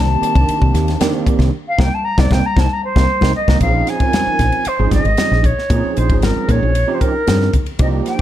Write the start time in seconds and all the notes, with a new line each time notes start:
Already playing: C2 D#3 A#3 C4 D4 G4
0.00 A5
0.22 D#3 A#3 C4 D4 G4, muted fretless electric bass stroke, hi-hat pedal, ride
0.35 C2, kick, ride
0.49 hi-hat pedal, ride, muted conga
0.62 C2, kick
0.74 D#2, snare, hi-hat pedal, ride
0.88 snare, ride
1.00 D#3 A#3 C4 D4 G4, snare, hi-hat pedal, ride, high conga
1.27 kick, hi-hat pedal, ride, muted conga
1.39 C2, snare, ride
1.68 F5
1.78 C2 A#3 C4 D#4 G5, kick, snare, high conga
1.94 A5
2.04 A#5
2.18 C2 A#3 C4 D#4 D5, kick, snare, high conga
2.31 C2 A#3 C4 D#4 G5, kick, snare, high conga
2.46 A#5
2.56 C2 A#3 C4 D#4 A5, kick, snare, high conga
2.73 A#5
2.84 C5
2.96 C2 A#3 C4 D#4, kick, snare, high conga
3.21 C2 A#3 C4 D#4, kick, snare, high conga
3.35 D#5
3.48 C2 A#3 C4 D#4, kick, snare, high conga
3.60 A#1 F3 C4 C#4 D#4 G#4 F5, kick, hi-hat pedal, ride
3.87 G#5, snare, hi-hat pedal, ride, muted conga
4.00 F3 C4 C#4 D#4 A#4, kick, ride
4.13 snare, hi-hat pedal, ride, high conga
4.27 muted fretless electric bass stroke
4.39 A#1, kick, snare, hi-hat pedal, ride
4.52 ride
4.65 D#4 G#4 C5, muted fretless electric bass stroke, hi-hat pedal, ride, muted conga
4.79 G#1 F3 C4 C#4 D#4 G#4
4.91 G#1 D#5, kick, snare, hi-hat pedal, ride, high conga
5.05 G#1, ride
5.17 F3 C4 C#4 D#4 G#4, snare, hi-hat pedal, ride, high conga
5.31 A#1, snare
5.44 D#4 F4 C#5, kick, hi-hat pedal, ride, muted conga
5.59 snare
5.70 A#2 F3 C4 C#4 D#4 G#4, kick, hi-hat pedal, ride, muted conga
5.84 muted fretless electric bass stroke
5.97 A#1 C5, hi-hat pedal, ride, muted conga
6.10 G#1 F3 C4 C#4 D#4 G#4, kick, ride
6.22 A#4, snare, hi-hat pedal, ride, high conga
6.36 muted fretless electric bass stroke
6.48 A#2 C#5, kick, hi-hat pedal, ride, low conga
6.63 A#1
6.75 D#4 F4, hi-hat pedal, ride, muted conga
6.87 F3 C4 C#4 D#4 G4
6.94 C5
7.00 A#4, kick, hi-hat pedal, ride
7.14 D#4 A#4
7.27 G2 F3 C4 C#4 D#4 G#4, snare, hi-hat pedal, ride, high conga
7.42 snare
7.53 D#4 G4, kick, hi-hat pedal, ride, muted conga, low conga
7.66 ride
7.79 C2 F3 A#3 D4 D#4 G4 D#5, kick, hi-hat pedal, ride, muted conga
8.06 G5, snare, hi-hat pedal, ride, muted conga
8.18 A#3